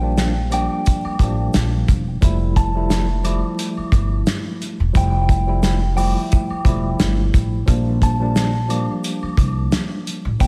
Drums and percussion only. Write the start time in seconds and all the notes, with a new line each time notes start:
0.18 snare, closed hi-hat, shaker
0.52 closed hi-hat, high woodblock, shaker
0.86 kick, closed hi-hat, shaker
1.05 high woodblock
1.19 kick, closed hi-hat, high woodblock, shaker
1.54 snare, closed hi-hat, shaker
1.89 kick, closed hi-hat, shaker
2.22 kick, closed hi-hat, shaker
2.56 kick, closed hi-hat, shaker
2.90 snare, closed hi-hat, shaker
3.24 closed hi-hat, high woodblock, shaker
3.59 closed hi-hat, shaker
3.77 high woodblock
3.92 kick, closed hi-hat, high woodblock, shaker
4.27 snare, closed hi-hat, shaker
4.61 closed hi-hat, shaker
4.95 kick, closed hi-hat, shaker
5.29 kick, closed hi-hat, shaker
5.63 snare, closed hi-hat, shaker
5.97 open hi-hat, high woodblock, shaker
6.32 kick, closed hi-hat, shaker
6.50 high woodblock
6.65 kick, closed hi-hat, high woodblock, shaker
6.99 snare, closed hi-hat, shaker
7.34 kick, closed hi-hat, shaker
7.68 kick, closed hi-hat, shaker
8.02 kick, closed hi-hat, shaker
8.36 snare, closed hi-hat, shaker
8.70 closed hi-hat, high woodblock, shaker
9.04 closed hi-hat, shaker
9.23 high woodblock
9.37 kick, closed hi-hat, high woodblock, shaker
9.72 snare, closed hi-hat, shaker
10.07 closed hi-hat, shaker
10.40 kick, closed hi-hat, shaker